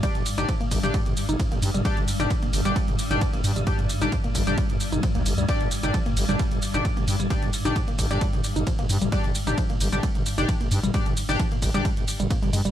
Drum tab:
RD |x---x---x---x---|x---x---x---x---|x---x---x---x---|x---x---x---x---|
HH |xxoxxxoxxxoxxxox|xxoxxxoxxxoxxxox|xxoxxxoxxxoxxxox|xxoxxxoxxxoxxxox|
SH |x-xxx-xxx-xxx-xx|x-xxx-xxx-xxx-xx|x-xxx-xxx-xxx-xx|x-xxx-xxx-xxx-xx|
T2 |-o-o-o-o-o-o-o-o|-o-o-o-o-o-o-o-o|-o-o-o-o-o-o-o-o|-o-o-o-o-o-o-o-o|
BD |o---o-o-o---o---|o---o---o---o---|o---o-o-o---o---|o---o---o---o---|

RD |x---x---x---x---|x---x---x---x---|x---x---x---x---|
HH |xxoxxxoxxxoxxxox|xxoxxxoxxxoxxxox|xxoxxxoxxxoxxxox|
SH |x-xxx-xxx-xxx-xx|x-xxx-xxx-xxx-xx|x-xxx-xxx-xxx-xx|
T2 |-o-o-o-o-o-o-o-o|-o-o-o-o-o-o-o-o|-o-o-o-o-o-o-o-o|
BD |o---o-o-o---o---|o---o---o---o---|o---o-o-o---o---|